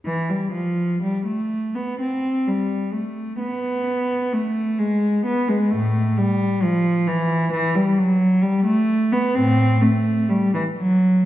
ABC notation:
X:1
M:4/4
L:1/16
Q:1/4=64
K:Am
V:1 name="Cello" clef=bass
E, G, F,2 G, A,2 B, C2 G,2 A,2 B,2- | B,2 A,2 ^G,2 B, G, [A,,A,]2 =G,2 F,2 E,2 | [K:Ador] E, G, F,2 G, A,2 B, [A,,C]2 A,2 G, E, F,2 |]